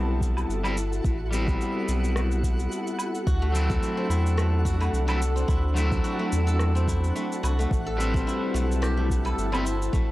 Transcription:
Already playing: sub bass B1, clean electric guitar G3 B3 C4 E4, guzheng A3 B3 A4, ambient pad E4 A4 A5, synth texture F#4 F#5
0.21 kick, cabasa
0.37 cabasa, low woodblock
0.49 sub bass G1, cabasa
0.64 clean electric guitar G3 B3 C4 E4, cabasa, low woodblock
0.77 cabasa
0.93 cabasa
1.04 sub bass A1, ambient pad F#5, kick, cabasa
1.31 clean electric guitar G3 B3 C4 E4, cabasa
1.48 kick, cabasa
1.61 cabasa
1.88 sub bass B1, cabasa
2.04 cabasa
2.16 cross-stick, cabasa
2.32 cabasa
2.43 kick, cabasa
2.59 cabasa
2.72 cabasa
2.87 cabasa
2.99 cabasa, low woodblock
3.15 cabasa
3.27 sub bass D2, ambient pad D4 F#5, guzheng F#4, kick, cabasa
3.42 guzheng A3
3.52 clean electric guitar F#3 A3 C4, cabasa
3.56 clean electric guitar E4
3.70 guzheng A4, kick, cabasa
3.83 cabasa
3.97 guzheng C4
4.09 sub bass E2, guzheng E4, cabasa
4.26 cabasa
4.37 guzheng A3, cross-stick, cabasa
4.65 guzheng F#4, kick, cabasa
4.80 guzheng A3, cabasa, low woodblock
4.93 sub bass C2, cabasa
5.08 clean electric guitar F#3 A3 C4 E4, guzheng A4, cabasa, low woodblock
5.22 cabasa
5.36 guzheng C4, cabasa
5.48 sub bass D2, guzheng E4, kick, cabasa
5.74 clean electric guitar F#3 A3 C4, guzheng A3, cabasa
5.78 clean electric guitar E4
5.92 kick, cabasa
6.04 guzheng F#4, cabasa
6.19 guzheng A3
6.32 sub bass E2, cabasa
6.47 guzheng A4, cabasa
6.59 cross-stick, cabasa
6.75 guzheng C4, cabasa
6.88 guzheng E4, kick, cabasa
7.04 cabasa
7.15 guzheng A3, cabasa
7.32 cabasa
7.43 sub bass C2, guzheng F#4, cabasa, low woodblock
7.59 guzheng A3, cabasa
7.71 sub bass A1, ambient pad E4 A5, kick, cabasa
7.86 guzheng A4
7.97 clean electric guitar G3 C4 B4, cabasa
8.01 clean electric guitar E4
8.14 guzheng C4, kick, cabasa
8.27 guzheng E4, cabasa
8.54 sub bass B1, guzheng A3, cabasa
8.72 cabasa
8.82 guzheng G4, cross-stick, cabasa
8.97 guzheng A3
9.10 kick, cabasa
9.25 guzheng A4, cabasa, low woodblock
9.38 sub bass G1, cabasa
9.52 clean electric guitar G3 B3 C4 E4, guzheng C4, cabasa, low woodblock
9.65 guzheng E4, cabasa
9.82 cabasa
9.93 sub bass A1, guzheng A3, kick, cabasa

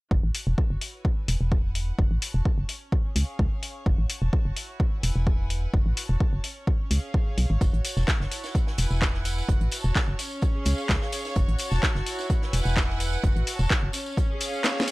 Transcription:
0.11 fm bass F#1, string section F#4, kick
0.23 fm bass A1
0.35 open hi-hat
0.43 fm bass E1, string section C#5 A5
0.58 kick
0.70 fm bass F#1
0.81 string section E4, open hi-hat
0.93 string section B4
1.05 kick
1.13 string section G#5
1.28 fm bass E1, open hi-hat
1.34 string section F#5
1.41 fm bass E1
1.52 kick
1.75 open hi-hat
1.98 fm bass F#1, string section F#4, kick
2.11 fm bass A1
2.18 string section C#5, open hi-hat
2.30 fm bass E1, string section A5
2.45 kick
2.58 fm bass F#1
2.69 string section C#4, open hi-hat
2.92 kick
2.99 string section G#4
3.16 fm bass C#2, open hi-hat
3.22 string section F5
3.39 fm bass C#2, kick
3.63 open hi-hat
3.86 fm bass F#1, string section F#4, kick
3.98 fm bass A1
4.10 open hi-hat
4.18 fm bass E1, string section A5
4.33 kick
4.45 fm bass F#1
4.56 string section E4, open hi-hat
4.80 kick
4.92 string section F#5
5.00 fm bass E1, string section B4 G#5, open hi-hat
5.16 fm bass E1
5.27 kick
5.50 open hi-hat
5.74 fm bass F#1, string section F#4, kick
5.86 fm bass A1
5.97 open hi-hat
6.06 fm bass E1, string section C#5 A5
6.20 kick
6.33 fm bass F#1
6.44 string section C#4, open hi-hat
6.67 kick
6.88 fm bass C#2, string section G#4, open hi-hat
6.97 string section F5
7.14 kick
7.38 fm bass B1, open hi-hat
7.50 fm bass G#1
7.61 fm bass F#1, string section F#4, kick, closed hi-hat, tambourine
7.73 fm bass A1, closed hi-hat
7.85 closed hi-hat, open hi-hat, tambourine
7.93 fm bass E1, string section A5, snare, tambourine
8.07 kick, snare, clap, closed hi-hat, tambourine
8.20 fm bass F#1, snare
8.31 string section E4, closed hi-hat, open hi-hat, tambourine
8.44 snare, tambourine
8.50 string section F#5
8.55 kick, closed hi-hat, tambourine
8.63 string section G#5, snare
8.78 fm bass E1, string section B4, closed hi-hat, open hi-hat, tambourine
8.91 fm bass E1, tambourine
9.02 kick, snare, clap, closed hi-hat, tambourine
9.14 snare
9.25 closed hi-hat, open hi-hat, tambourine
9.38 tambourine
9.48 fm bass F#1, string section F#4, kick, closed hi-hat, tambourine
9.61 fm bass A1, closed hi-hat
9.71 closed hi-hat, open hi-hat, tambourine
9.81 fm bass E1, string section C#5 A5, tambourine
9.96 kick, snare, clap, closed hi-hat, tambourine
10.08 fm bass F#1
10.19 string section C#4, closed hi-hat, open hi-hat, tambourine
10.31 tambourine
10.42 kick, closed hi-hat, tambourine
10.51 string section G#4
10.65 fm bass C#2, closed hi-hat, open hi-hat, tambourine
10.72 string section F5
10.78 tambourine
10.89 fm bass C#2, kick, snare, clap, closed hi-hat, tambourine
11.01 snare
11.12 closed hi-hat, open hi-hat, tambourine
11.25 snare, tambourine
11.36 fm bass F#1, string section F#4, kick, closed hi-hat, tambourine
11.48 fm bass A1, closed hi-hat
11.58 closed hi-hat, open hi-hat, tambourine
11.68 fm bass E1, string section A5, snare, tambourine
11.83 kick, snare, clap, closed hi-hat, tambourine
11.95 fm bass F#1, snare
12.06 string section E4, closed hi-hat, open hi-hat, tambourine
12.19 snare, tambourine
12.30 kick, closed hi-hat, tambourine
12.42 string section B4, snare
12.47 string section G#5
12.53 fm bass E1, closed hi-hat, open hi-hat, tambourine
12.57 string section F#5
12.66 fm bass E1, tambourine
12.77 kick, snare, clap, closed hi-hat
12.90 snare
13.00 closed hi-hat, open hi-hat, tambourine
13.12 tambourine
13.24 fm bass F#1, string section F#4, kick, closed hi-hat, tambourine
13.36 fm bass A1, closed hi-hat
13.47 closed hi-hat, open hi-hat, tambourine
13.56 fm bass E1, string section C#5 A5, tambourine
13.70 kick, snare, clap, closed hi-hat, tambourine
13.83 fm bass F#1
13.93 string section C#4, closed hi-hat, open hi-hat, tambourine
14.06 tambourine
14.17 kick, closed hi-hat, tambourine
14.29 string section G#4
14.41 closed hi-hat, open hi-hat, tambourine
14.47 string section F5
14.54 tambourine
14.64 snare, clap, closed hi-hat, tambourine
14.77 snare
14.80 snare
14.88 closed hi-hat, open hi-hat, tambourine

